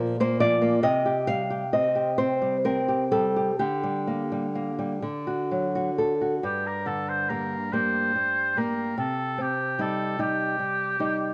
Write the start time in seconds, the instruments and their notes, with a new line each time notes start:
Already playing: nylon-string guitar A#2 A#3 A#4
0.00 nylon-string guitar F3
0.20 nylon-string guitar A#3 C5
0.40 nylon-string guitar F3 D5
0.62 nylon-string guitar A#3
0.83 nylon-string guitar C3 D#5
1.06 nylon-string guitar G4
1.27 nylon-string guitar G3 F5
1.50 nylon-string guitar G4
1.73 nylon-string guitar C4 D#5
1.95 nylon-string guitar G4
2.18 nylon-string guitar C4 C5
2.42 nylon-string guitar G3
2.65 nylon-string guitar C4 A#4
2.88 nylon-string guitar G4
3.11 nylon-string guitar G3 A4
3.36 nylon-string guitar G4
3.59 nylon-string guitar D3 G4
3.83 nylon-string guitar G3
4.07 nylon-string guitar A#3
4.32 nylon-string guitar G3
4.55 nylon-string guitar A#3
4.79 nylon-string guitar G3
5.03 nylon-string guitar D3
5.27 nylon-string guitar F#4
5.52 nylon-string guitar F#3
5.75 nylon-string guitar F#4
5.98 nylon-string guitar A4
6.21 nylon-string guitar F#4
6.43 nylon-string guitar G2, oboe G4
6.67 oboe A#4
6.86 nylon-string guitar D3, oboe A4
7.09 oboe C5
7.29 nylon-string guitar G3 A#3, oboe A#4
7.73 nylon-string guitar G3 A#3, oboe C5
8.15 nylon-string guitar G3
8.57 nylon-string guitar G3 A#3, oboe A#4
8.98 nylon-string guitar C3, oboe A4
9.38 nylon-string guitar C4, oboe G4
9.79 nylon-string guitar G3 D#4, oboe A4
10.19 nylon-string guitar G3 D#4, oboe G4
10.59 nylon-string guitar G3
10.99 nylon-string guitar G3 D#4